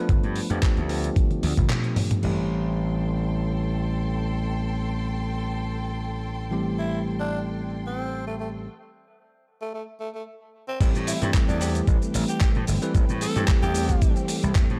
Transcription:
Already playing: tine electric piano F3 A3 B3 D4 B4
0.09 slap bass G1, kick, closed hi-hat
0.23 slap bass G2, closed hi-hat
0.36 open hi-hat
0.50 slap bass F2, tine electric piano F3 A3 B3 D4 G4, closed hi-hat
0.63 kick, clap, closed hi-hat
0.77 slap bass D2, closed hi-hat
0.88 tine electric piano F3 A3 B3 D4 G4, open hi-hat
1.04 closed hi-hat
1.16 kick, closed hi-hat, high tom
1.31 closed hi-hat, high tom
1.43 slap bass D2, open hi-hat, high tom
1.57 slap bass G1, kick, closed hi-hat, mid tom
1.70 clap, closed hi-hat, mid tom
1.84 closed hi-hat
1.96 mid tom, open hi-hat
2.11 closed hi-hat, mid tom
2.22 slap bass A1, tine electric piano E3 G3 A3 C4 G4, string section A4 G5 C6, crash
6.51 tine electric piano E3 G3 A3 C4 G4
6.79 tenor saxophone E4
7.20 tenor saxophone D4
7.86 tenor saxophone C4
8.27 tenor saxophone A3
8.40 tenor saxophone A3
9.61 tenor saxophone A3
9.74 tenor saxophone A3
10.00 tenor saxophone A3
10.15 tenor saxophone A3
10.68 tenor saxophone C4
10.80 slap bass A1, tine electric piano E3 G3 A3 C4 G4, string section A3 C4 G4, tenor saxophone C4, kick, closed hi-hat, crash, shaker
10.95 slap bass A2, closed hi-hat, shaker
11.07 tenor saxophone E4, open hi-hat, shaker
11.21 slap bass G2, tine electric piano E3 G3 A3 C4 G4, closed hi-hat, shaker
11.34 kick, clap, closed hi-hat, shaker
11.48 slap bass E2, tenor saxophone D4, closed hi-hat, shaker
11.60 tine electric piano E3 G3 A3 C4 G4, open hi-hat, shaker
11.75 closed hi-hat, shaker
11.86 slap bass A1, tine electric piano E3 G3 A3 C4 B4, kick, closed hi-hat, shaker
12.02 closed hi-hat, shaker
12.14 slap bass A1, open hi-hat, shaker
12.28 tenor saxophone G4, closed hi-hat, shaker
12.41 tenor saxophone G4, kick, clap, closed hi-hat, shaker
12.55 slap bass A2, closed hi-hat
12.67 slap bass G1, open hi-hat, shaker
12.82 tine electric piano E3 G3 A3 C4 B4, closed hi-hat, shaker
12.95 slap bass A1, kick, closed hi-hat, shaker
13.09 slap bass A2, closed hi-hat, shaker
13.21 tenor saxophone A4, open hi-hat, shaker
13.36 slap bass G2, tine electric piano E3 G3 A3 C4 G4, closed hi-hat, shaker
13.48 kick, clap, closed hi-hat, shaker
13.62 slap bass E2, tenor saxophone G4, closed hi-hat, shaker
13.74 tine electric piano E3 G3 A3 C4 G4, open hi-hat, shaker
13.89 kick, closed hi-hat, shaker
14.02 kick, closed hi-hat, shaker
14.16 closed hi-hat, shaker
14.28 open hi-hat, shaker
14.43 slap bass C2, closed hi-hat, shaker
14.55 slap bass E2, kick, clap, closed hi-hat, shaker
14.70 slap bass A2, closed hi-hat

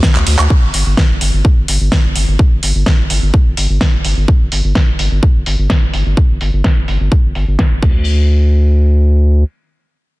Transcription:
0.03 kick, snare, closed hi-hat, cabasa
0.15 sub bass D2, clap, closed hi-hat, cabasa
0.27 sub bass D2, open hi-hat, ride
0.39 sub bass D2, clap, cabasa, high woodblock
0.50 kick
0.62 sub bass G1
0.74 sub bass G1, open hi-hat
0.86 sub bass G1
0.97 kick, snare
1.10 sub bass G1
1.21 sub bass G1, open hi-hat
1.33 sub bass G1
1.45 kick
1.57 sub bass G1
1.68 sub bass G1, open hi-hat
1.81 sub bass G1
1.92 kick, snare
2.04 sub bass G1
2.16 sub bass G1, open hi-hat
2.28 sub bass G1
2.39 kick
2.51 sub bass G1
2.63 sub bass G1, open hi-hat
2.75 sub bass G1
2.86 kick, snare
2.99 sub bass G1
3.10 sub bass G1, open hi-hat
3.22 sub bass G1
3.34 kick
3.46 sub bass G1
3.57 sub bass G1, open hi-hat
3.69 sub bass G1
3.81 kick, snare
3.93 sub bass G1
4.05 sub bass G1, open hi-hat
4.17 sub bass G1
4.28 kick
4.40 sub bass G1
4.52 sub bass G1, open hi-hat
4.64 sub bass G1
4.75 kick, snare
4.88 sub bass G1
4.99 sub bass G1, open hi-hat
5.11 sub bass G1
5.23 kick
5.35 sub bass G1
5.46 sub bass G1, open hi-hat
5.58 sub bass G1
5.70 kick, snare
5.82 sub bass G1
5.94 sub bass G1, open hi-hat
6.06 sub bass G1
6.17 kick
6.29 sub bass G1
6.41 sub bass G1, open hi-hat
6.53 sub bass G1
6.64 kick, snare
6.77 sub bass G1
6.88 sub bass G1, open hi-hat
7.00 sub bass G1
7.12 kick
7.24 sub bass G1
7.35 sub bass G1, open hi-hat
7.47 sub bass G1
7.59 kick, snare
7.71 sub bass G1
7.83 sub bass D2, kick, crash

